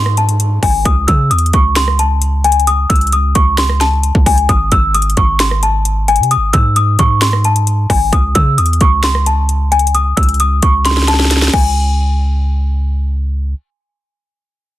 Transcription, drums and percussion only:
0.06 cross-stick medium
0.17 closed hi-hat medium
0.29 closed hi-hat medium
0.40 closed hi-hat medium
0.63 kick medium
0.63 open hi-hat medium
0.85 kick loud
0.85 closed hi-hat medium
1.08 kick loud
1.08 closed hi-hat medium
1.31 closed hi-hat medium
1.38 closed hi-hat medium
1.46 closed hi-hat medium
1.53 kick medium
1.53 closed hi-hat medium
1.75 finger snap medium
1.75 snare loud
1.75 closed hi-hat medium
1.88 cross-stick medium
1.99 closed hi-hat medium
2.22 closed hi-hat medium
2.44 closed hi-hat medium
2.52 closed hi-hat medium
2.60 closed hi-hat medium
2.67 closed hi-hat medium
2.90 kick loud
2.90 closed hi-hat medium
2.96 closed hi-hat medium
3.01 closed hi-hat medium
3.07 closed hi-hat soft
3.12 closed hi-hat medium
3.35 kick loud
3.35 closed hi-hat medium
3.57 finger snap loud
3.57 cross-stick medium
3.57 snare loud
3.57 closed hi-hat medium
3.69 cross-stick medium
3.81 snare medium
3.81 closed hi-hat medium
4.03 closed hi-hat medium
4.15 kick loud
4.26 kick loud
4.26 closed hi-hat soft
4.26 open hi-hat medium
4.38 closed hi-hat medium
4.49 kick loud
4.49 closed hi-hat medium
4.72 kick medium
4.72 closed hi-hat medium
4.94 closed hi-hat medium
5.02 closed hi-hat medium
5.10 closed hi-hat medium
5.17 kick loud
5.17 closed hi-hat medium
5.39 finger snap loud
5.39 snare loud
5.39 closed hi-hat medium
5.51 cross-stick medium
5.63 closed hi-hat medium
5.85 closed hi-hat medium
6.08 closed hi-hat medium
6.16 closed hi-hat medium
6.23 closed hi-hat medium
6.31 closed hi-hat medium
6.53 kick loud
6.53 closed hi-hat medium
6.76 closed hi-hat medium
6.99 kick loud
6.99 closed hi-hat medium
7.21 finger snap loud
7.21 snare loud
7.21 closed hi-hat medium
7.33 cross-stick medium
7.44 closed hi-hat medium
7.56 closed hi-hat medium
7.67 closed hi-hat medium
7.90 kick medium
7.90 open hi-hat medium
8.13 kick loud
8.13 closed hi-hat medium
8.35 kick loud
8.35 closed hi-hat medium
8.58 closed hi-hat medium
8.66 closed hi-hat medium
8.73 closed hi-hat medium
8.81 kick loud
8.81 closed hi-hat medium
9.03 finger snap loud
9.03 snare loud
9.03 closed hi-hat medium
9.15 cross-stick medium
9.26 closed hi-hat medium
9.49 closed hi-hat medium
9.72 closed hi-hat medium
9.79 closed hi-hat medium
9.87 closed hi-hat medium
9.95 closed hi-hat medium
10.17 kick loud
10.17 closed hi-hat medium
10.23 closed hi-hat medium
10.29 closed hi-hat medium
10.34 closed hi-hat soft
10.40 closed hi-hat medium
10.62 kick loud
10.62 closed hi-hat medium
10.85 snare medium
10.85 closed hi-hat medium
10.91 snare medium
10.97 snare medium
11.02 snare medium
11.08 snare medium
11.08 closed hi-hat medium
11.14 snare medium
11.20 snare medium
11.25 snare medium
11.31 snare medium
11.31 closed hi-hat medium
11.37 snare medium
11.42 snare medium
11.48 snare medium
11.54 kick loud
11.54 crash medium

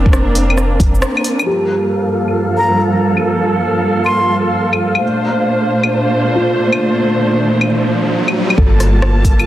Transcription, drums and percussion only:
0.06 kick loud
0.13 cross-stick loud
0.13 shaker medium
0.35 open hi-hat medium
0.50 claves medium
0.58 cross-stick medium
0.58 shaker medium
0.80 kick loud
0.80 open hi-hat medium
0.80 shaker soft
0.95 shaker medium
1.02 cross-stick loud
1.02 shaker medium
1.17 claves medium
1.24 open hi-hat medium
1.39 claves medium
1.39 shaker soft
2.28 claves medium
3.17 claves medium
4.06 claves medium
4.73 claves medium
4.95 claves medium
5.84 claves medium
6.72 claves medium
7.61 claves medium
8.28 claves medium
8.50 claves medium
8.58 kick loud
8.80 cross-stick medium
8.80 open hi-hat medium
8.80 shaker medium
9.02 cross-stick loud
9.24 kick medium
9.24 open hi-hat medium
9.24 shaker medium
9.40 claves medium
9.40 shaker soft

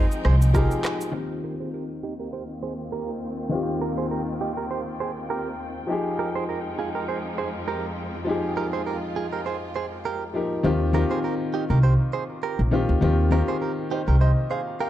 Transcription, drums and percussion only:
0.11 shaker medium
0.25 cross-stick medium
0.42 shaker medium
0.55 kick medium
0.55 cross-stick medium
0.55 shaker medium
0.71 shaker soft
0.84 cross-stick medium
0.84 clap medium
0.84 shaker soft
1.01 shaker medium

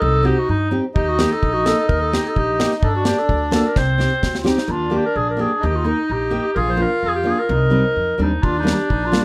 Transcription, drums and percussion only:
0.96 kick loud
1.19 snare medium
1.43 kick medium
1.66 snare medium
1.89 kick medium
2.13 snare medium
2.36 kick medium
2.60 snare medium
2.71 snare soft
2.83 kick loud
3.05 snare medium
3.29 kick medium
3.52 snare medium
3.76 kick medium
3.76 snare soft
4.00 snare soft
4.23 kick medium
4.23 snare medium
4.35 snare medium
4.46 snare medium
4.58 snare medium
8.43 kick medium
8.67 snare medium
8.90 kick medium
9.13 snare medium

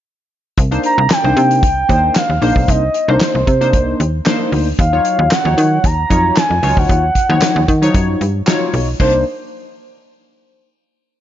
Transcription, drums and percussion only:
0.58 kick loud
0.58 closed hi-hat medium
0.72 closed hi-hat medium
0.83 closed hi-hat medium
1.10 snare loud
1.10 clap loud
1.10 closed hi-hat loud
1.37 closed hi-hat medium
1.51 closed hi-hat medium
1.63 kick loud
1.63 closed hi-hat loud
1.89 kick medium
1.89 closed hi-hat medium
2.15 snare loud
2.15 clap medium
2.15 closed hi-hat loud
2.42 open hi-hat medium
2.56 kick loud
2.68 kick loud
2.68 closed hi-hat medium
2.94 closed hi-hat medium
3.21 snare loud
3.21 clap loud
3.21 closed hi-hat medium
3.47 kick medium
3.47 closed hi-hat medium
3.61 closed hi-hat medium
3.73 kick loud
3.73 closed hi-hat medium
4.00 closed hi-hat medium
4.26 snare loud
4.26 clap medium
4.26 closed hi-hat medium
4.52 open hi-hat medium
4.79 kick loud
4.79 closed hi-hat medium
5.05 closed hi-hat medium
5.31 snare loud
5.31 clap medium
5.31 closed hi-hat loud
5.58 closed hi-hat medium
5.84 kick loud
5.84 closed hi-hat medium
6.10 kick medium
6.10 closed hi-hat medium
6.37 snare loud
6.37 clap loud
6.37 closed hi-hat loud
6.63 open hi-hat medium
6.77 kick loud
6.89 kick loud
6.89 closed hi-hat medium
7.15 kick medium
7.15 closed hi-hat medium
7.42 snare loud
7.42 clap loud
7.42 closed hi-hat loud
7.68 kick medium
7.68 closed hi-hat medium
7.82 closed hi-hat medium
7.94 kick loud
7.94 closed hi-hat medium
8.21 closed hi-hat medium
8.47 snare loud
8.47 clap loud
8.47 closed hi-hat loud
8.73 open hi-hat medium
9.00 kick loud
9.00 crash medium

